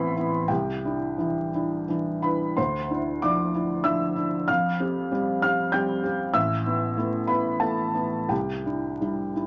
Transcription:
0.00 0.52 A1 medium
0.00 0.52 E3 soft
0.00 0.17 B3 soft
0.00 0.51 C4 medium
0.00 0.17 E4 medium
0.00 0.46 B4 soft
0.00 0.52 E5 medium
0.00 0.49 B5 medium
0.00 0.52 C6 medium
0.00 0.51 E6 loud
0.17 0.47 B3 soft
0.17 0.46 E4 soft
0.48 0.83 C2 soft
0.48 1.84 G4 soft
0.48 1.87 G5 medium
0.85 1.16 D4 soft
0.85 1.16 E4 soft
1.18 1.49 E3 soft
1.18 1.50 D4 soft
1.18 1.50 E4 soft
1.54 1.85 D4 soft
1.54 1.85 E4 soft
1.89 2.20 E3 soft
1.89 2.20 D4 soft
1.89 2.21 E4 soft
2.22 2.54 D4 soft
2.22 2.54 E4 soft
2.22 2.55 B4 soft
2.22 2.57 B5 medium
2.57 2.89 D2 soft
2.57 3.19 C5 soft
2.57 3.22 C6 medium
2.91 3.19 D4 soft
2.91 3.20 E4 soft
3.22 3.51 F3 soft
3.22 3.51 D4 soft
3.22 3.51 E4 soft
3.22 3.82 D5 soft
3.22 3.85 D6 medium
3.54 3.82 D4 soft
3.54 3.83 E4 soft
3.84 4.13 F3 soft
3.84 4.13 D4 soft
3.84 4.13 E4 soft
3.84 4.44 E5 medium
3.84 4.47 E6 medium
4.16 4.45 D4 soft
4.16 4.45 E4 soft
4.48 4.80 F2 medium
4.48 5.40 F5 medium
4.48 5.41 F6 medium
4.80 5.09 C4 soft
4.80 5.09 G4 soft
5.11 5.40 G3 soft
5.11 5.40 C4 soft
5.11 5.40 G4 soft
5.42 5.71 C4 soft
5.42 5.71 G4 soft
5.42 5.72 F5 medium
5.42 5.74 F6 medium
5.72 6.01 G3 soft
5.72 6.01 C4 soft
5.72 6.01 G4 soft
5.72 6.02 G5 medium
5.72 6.04 G6 medium
6.03 6.32 C4 soft
6.03 6.32 G4 soft
6.34 6.65 A1 medium
6.34 7.25 E5 medium
6.34 7.29 E6 medium
6.66 6.95 B3 soft
6.66 6.95 E4 soft
6.97 7.26 A3 soft
6.97 7.26 B3 soft
6.97 7.27 E4 soft
7.27 7.58 B3 soft
7.27 7.58 E4 soft
7.27 7.59 B4 medium
7.27 7.61 B5 medium
7.60 7.91 A3 soft
7.60 7.91 B3 soft
7.60 7.91 E4 soft
7.60 8.26 A4 soft
7.60 8.29 A5 medium
7.95 8.26 B3 soft
7.95 8.26 E4 soft
8.29 8.64 C2 soft
8.29 9.47 G4 soft
8.29 9.47 G5 medium
8.65 8.97 D4 soft
8.65 8.97 E4 soft
9.01 9.32 G3 soft
9.01 9.33 D4 soft
9.01 9.33 E4 soft
9.36 9.47 D4 soft
9.36 9.47 E4 soft

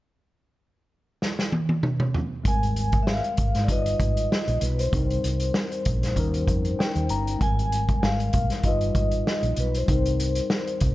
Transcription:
1.22 snare medium
1.39 snare medium
1.52 high tom medium
1.69 high tom medium
1.83 mid tom medium
2.00 mid tom medium
2.14 floor tom medium
2.44 3.20 G#1 medium
2.44 3.66 G3 medium
2.44 3.66 G#3 medium
2.44 3.67 C4 soft
2.44 kick medium
2.44 closed hi-hat medium
2.48 3.68 A#4 medium
2.48 3.04 G#5 medium
2.63 closed hi-hat soft
2.76 closed hi-hat medium
2.92 kick medium
2.92 closed hi-hat soft
3.03 3.08 E5 medium
3.07 3.66 F5 medium
3.07 snare loud
3.24 closed hi-hat soft
3.37 3.52 G#1 medium
3.37 kick medium
3.37 closed hi-hat medium
3.55 3.67 G#2 medium
3.55 snare soft
3.55 closed hi-hat soft
3.64 4.90 G3 medium
3.64 3.70 D5 medium
3.68 3.94 G1 medium
3.68 4.90 D#4 medium
3.68 4.91 F4 medium
3.68 4.92 B4 medium
3.68 4.59 D#5 medium
3.68 kick medium
3.68 closed hi-hat medium
3.86 closed hi-hat medium
3.99 4.25 G#1 medium
3.99 kick medium
3.99 closed hi-hat medium
4.17 closed hi-hat soft
4.32 snare medium
4.48 4.59 A#1 medium
4.48 closed hi-hat soft
4.61 4.87 B1 medium
4.61 4.80 B4 medium
4.61 closed hi-hat medium
4.79 7.06 C5 medium
4.79 closed hi-hat soft
4.91 5.18 C2 medium
4.91 6.14 G3 medium
4.91 6.14 C4 medium
4.91 6.15 D#4 medium
4.91 kick loud
4.91 closed hi-hat medium
4.96 6.16 A#4 medium
5.10 closed hi-hat soft
5.24 5.50 C2 medium
5.24 closed hi-hat medium
5.40 closed hi-hat soft
5.54 snare medium
5.72 closed hi-hat soft
5.85 6.12 A#1 medium
5.85 kick medium
5.85 closed hi-hat medium
6.03 snare soft
6.03 closed hi-hat soft
6.15 6.48 D#2 medium
6.15 7.37 G3 medium
6.15 7.38 C#4 medium
6.15 7.39 D#4 medium
6.15 kick medium
6.15 closed hi-hat medium
6.20 7.40 A#4 medium
6.34 closed hi-hat soft
6.48 6.73 F2 medium
6.48 kick medium
6.48 closed hi-hat medium
6.65 closed hi-hat soft
6.79 7.08 G5 medium
6.79 snare medium
6.95 7.07 D#2 medium
6.95 closed hi-hat soft
7.09 7.35 G1 medium
7.09 7.39 A#5 medium
7.09 closed hi-hat medium
7.27 closed hi-hat soft
7.39 7.92 G#1 medium
7.39 8.63 G3 medium
7.39 8.61 G#3 medium
7.39 8.62 C4 soft
7.39 8.05 G#5 loud
7.39 kick medium
7.39 closed hi-hat medium
7.43 8.63 A#4 medium
7.59 closed hi-hat soft
7.72 closed hi-hat medium
7.89 kick medium
7.89 closed hi-hat soft
8.02 8.28 G#1 medium
8.02 8.67 F5 medium
8.02 snare loud
8.20 closed hi-hat soft
8.33 8.48 A#1 medium
8.33 kick medium
8.33 closed hi-hat medium
8.50 snare soft
8.50 closed hi-hat soft
8.63 8.94 G1 medium
8.63 9.85 G3 medium
8.63 9.86 D#4 medium
8.63 9.87 F4 medium
8.63 9.61 D#5 medium
8.63 kick medium
8.63 closed hi-hat medium
8.69 9.88 B4 medium
8.81 closed hi-hat soft
8.95 9.20 G#1 medium
8.95 kick medium
8.95 closed hi-hat medium
9.11 closed hi-hat soft
9.27 snare medium
9.43 9.55 A#1 medium
9.43 closed hi-hat soft
9.56 9.83 B1 medium
9.56 9.76 B4 medium
9.56 closed hi-hat medium
9.74 10.95 C5 medium
9.74 closed hi-hat soft
9.86 10.39 C2 medium
9.86 10.95 G3 medium
9.86 10.95 C4 medium
9.86 10.95 D#4 medium
9.86 kick loud
9.86 closed hi-hat medium
9.91 10.95 A#4 medium
10.06 closed hi-hat soft
10.20 closed hi-hat medium
10.35 closed hi-hat soft
10.50 snare loud
10.67 closed hi-hat soft
10.80 10.95 C2 medium
10.80 kick medium
10.80 closed hi-hat medium

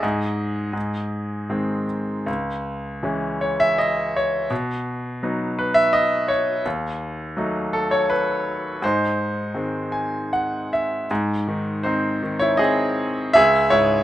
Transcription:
0.00 0.72 G#2 medium
0.00 1.87 G#4 medium
0.00 1.85 D#5 medium
0.73 2.23 G#2 soft
1.50 2.25 D#3 soft
1.50 2.25 G#3 soft
1.50 2.25 C4 soft
2.26 4.46 C#2 soft
3.03 4.47 E3 soft
3.03 4.47 G#3 soft
3.03 4.47 C#4 soft
3.41 3.58 C#5 medium
3.60 3.77 E5 medium
3.78 4.16 D#5 medium
4.16 4.50 C#5 medium
4.50 6.61 B2 medium
5.23 6.61 F#3 soft
5.23 6.62 B3 soft
5.23 6.62 D#4 soft
5.59 5.77 B4 medium
5.74 5.92 E5 medium
5.93 6.30 D#5 medium
6.28 6.62 C#5 medium
6.66 8.79 D#2 medium
7.37 8.79 F#3 soft
7.37 8.79 A3 soft
7.37 8.79 D#4 soft
7.73 7.90 A4 medium
7.91 8.10 C#5 medium
8.10 8.85 B4 medium
8.82 11.06 G#2 soft
8.82 10.30 D#4 soft
8.82 10.30 C5 medium
9.54 11.06 D#3 soft
9.54 11.05 G#3 soft
9.54 11.05 C4 soft
9.92 10.29 G#5 soft
10.33 10.70 F#5 soft
10.73 11.08 E5 soft
11.11 13.31 G#2 medium
11.48 12.21 D#3 soft
11.83 12.59 C4 soft
11.83 12.37 D#4 soft
11.83 12.37 C5 medium
12.23 13.31 D#3 soft
12.39 12.59 E4 medium
12.39 12.60 C#5 medium
12.57 13.33 C4 soft
12.57 13.30 G#4 medium
12.57 13.35 D#5 medium
13.33 14.03 C#2 medium
13.33 13.69 G#4 medium
13.33 13.68 E5 medium
13.70 14.03 G#2 soft
13.70 14.03 E4 soft
13.70 14.03 C#5 medium

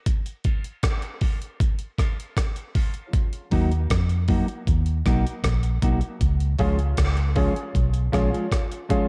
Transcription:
0.06 kick loud
0.06 closed hi-hat medium
0.26 closed hi-hat medium
0.44 0.62 F3 medium
0.44 0.63 G#3 medium
0.44 0.63 C#4 medium
0.44 0.63 F4 loud
0.44 kick medium
0.44 closed hi-hat medium
0.64 closed hi-hat medium
0.83 kick loud
0.83 cross-stick loud
0.83 closed hi-hat loud
1.02 closed hi-hat medium
1.21 1.39 F3 medium
1.21 1.39 G#3 medium
1.21 1.40 C#4 medium
1.21 1.40 F4 medium
1.21 kick loud
1.21 open hi-hat medium
1.42 muted clean electric guitar stroke soft
1.42 closed hi-hat soft
1.60 kick loud
1.60 closed hi-hat medium
1.79 closed hi-hat medium
1.98 2.16 F3 medium
1.98 2.16 G#3 medium
1.98 2.16 C#4 medium
1.98 2.17 F4 medium
1.98 kick loud
1.98 cross-stick medium
1.98 closed hi-hat medium
2.20 closed hi-hat medium
2.37 kick loud
2.37 cross-stick loud
2.37 closed hi-hat medium
2.56 closed hi-hat medium
2.74 2.93 F3 medium
2.74 2.93 G#3 medium
2.74 2.93 C#4 medium
2.74 2.94 F4 medium
2.74 kick loud
2.74 open hi-hat medium
2.94 closed hi-hat medium
3.13 kick loud
3.13 closed hi-hat medium
3.33 closed hi-hat medium
3.51 3.86 D#2 medium
3.51 3.69 F#3 medium
3.51 3.70 A#3 medium
3.51 3.70 D#4 loud
3.51 3.71 F#4 medium
3.51 kick medium
3.51 open hi-hat medium
3.72 closed hi-hat medium
3.90 4.41 F2 loud
3.90 kick loud
3.90 cross-stick loud
3.90 closed hi-hat loud
4.09 closed hi-hat soft
4.28 4.46 F#3 medium
4.28 4.47 A#3 medium
4.28 4.47 D#4 medium
4.28 4.47 F#4 medium
4.28 kick loud
4.28 open hi-hat medium
4.48 muted clean electric guitar stroke soft
4.48 closed hi-hat soft
4.67 5.01 D#2 loud
4.67 kick loud
4.67 closed hi-hat medium
4.86 closed hi-hat medium
5.06 5.23 B1 medium
5.06 5.23 F#3 medium
5.06 5.24 A#3 medium
5.06 5.24 D#4 medium
5.06 5.24 F#4 medium
5.06 kick loud
5.06 cross-stick medium
5.06 closed hi-hat medium
5.27 closed hi-hat medium
5.44 5.78 A#1 medium
5.44 kick medium
5.44 cross-stick loud
5.44 closed hi-hat medium
5.63 closed hi-hat medium
5.82 6.00 B1 medium
5.82 6.00 F#3 medium
5.82 6.01 A#3 medium
5.82 6.01 D#4 medium
5.82 6.01 F#4 medium
5.82 kick loud
5.82 closed hi-hat medium
6.01 muted clean electric guitar stroke soft
6.01 closed hi-hat soft
6.21 6.55 C#2 loud
6.21 kick loud
6.21 closed hi-hat medium
6.40 closed hi-hat medium
6.58 6.93 C#2 medium
6.58 6.77 F3 medium
6.58 6.77 G#3 medium
6.58 6.73 C#4 medium
6.58 6.78 C#4 loud
6.58 6.74 F4 medium
6.58 6.78 F4 loud
6.58 6.74 G#4 medium
6.58 kick medium
6.58 open hi-hat medium
6.79 closed hi-hat medium
6.97 7.49 C#2 medium
6.97 kick loud
6.97 cross-stick loud
6.97 closed hi-hat loud
7.17 closed hi-hat medium
7.35 7.54 F3 medium
7.35 7.54 G#3 medium
7.35 7.50 C#4 medium
7.35 7.54 C#4 medium
7.35 7.51 F4 medium
7.35 7.54 F4 medium
7.35 7.51 G#4 loud
7.35 kick loud
7.35 open hi-hat medium
7.55 muted clean electric guitar stroke soft
7.55 closed hi-hat soft
7.75 8.09 B1 medium
7.75 kick loud
7.75 closed hi-hat medium
7.94 closed hi-hat medium
8.12 8.31 A#1 medium
8.12 8.30 F3 medium
8.12 8.31 G#3 medium
8.12 8.27 C#4 medium
8.12 8.31 C#4 medium
8.12 8.28 F4 medium
8.12 8.31 F4 loud
8.12 8.28 G#4 loud
8.12 kick loud
8.12 cross-stick medium
8.12 closed hi-hat medium
8.32 8.47 F3 soft
8.32 8.47 G#3 medium
8.32 8.46 C#4 medium
8.32 8.46 F4 medium
8.32 closed hi-hat soft
8.52 kick loud
8.52 cross-stick loud
8.52 closed hi-hat medium
8.72 closed hi-hat medium
8.89 9.07 F3 medium
8.89 9.08 G#3 medium
8.89 9.04 C#4 medium
8.89 9.08 C#4 medium
8.89 9.04 F4 medium
8.89 9.08 F4 medium
8.89 9.05 G#4 loud
8.89 kick loud
8.89 closed hi-hat medium

